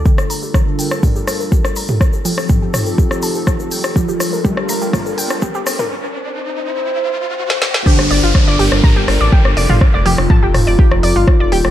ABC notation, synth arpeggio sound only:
X:1
M:4/4
L:1/16
Q:1/4=123
K:Gm
V:1 name="Synth arpeggio sound"
G z b G z A g z G G z B G z b G | z A g z G G z A G z a G z A g z | G G z B G z b G z A g z G G z B | z16 |
[Gg] z [dd'] [Ff] z [dd'] [Gg] z [bb'] [Gg] z [dd'] [Gg] z [dd'] [Ff] | z [dd'] [Gg] z [aa'] [Gg] z [dd'] [Gg] z [dd'] [Ff] z [dd'] [Gg] z |]